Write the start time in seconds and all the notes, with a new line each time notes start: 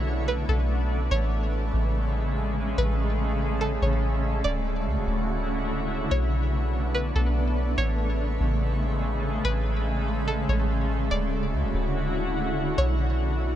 Already playing: B1 A3 B3 D4 C#5
0.28 B4
0.49 B1 A4
1.11 A1 C#3 G#3 C#5
1.74 A1
2.78 A1 B4
3.61 A4
3.82 A1 C#5
4.44 D1 D3 E4 F#4 D5
4.86 D2
4.97 D1
5.07 D1
6.11 B1 A3 B3 D4 C#5
6.95 B4
7.15 B1 A4
7.78 A1 C#3 G#3 C#5
8.40 A1
9.45 A1 B4
10.28 A4
10.49 A1 C#5
11.11 D1 D3 E4 F#4 D5
11.53 D2
11.63 D1
11.74 D1
12.78 B1 C#5